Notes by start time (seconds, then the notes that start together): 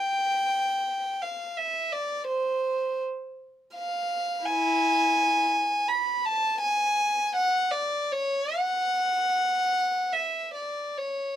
Already playing: G5
1.22 F5
1.57 E5
1.92 D5
2.28 C5
3.75 F5
4.45 E4 G#5
5.88 B5
6.25 A5
6.61 G#5
7.36 F#5
7.71 D5
8.12 C#5
8.57 F#5
10.13 E5
10.54 D5
10.97 C#5